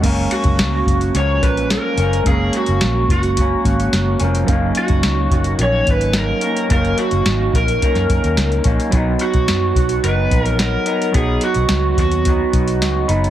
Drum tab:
CC |x---------------|----------------|----------------|----------------|
HH |x-xxx-xxx-xxx-xx|x-xxx-xxx-xxx-xx|x-xxx-xxx-xxx-xx|xxxxx-xxxxxxxxxx|
SD |----o-------o---|----o-------o---|----o-------o---|----o----o--o---|
BD |o--o--o---o-----|o-----o-o-o-----|o--o--o---o-----|o-----o-o-o---o-|

CC |----------------|----------------|
HH |x-xxx-xxx-xxx-xx|x-xxx-xxx-xxx-xx|
SD |----o-------o---|----o-------o---|
BD |o--o--o---o-----|o-----o-o-o-----|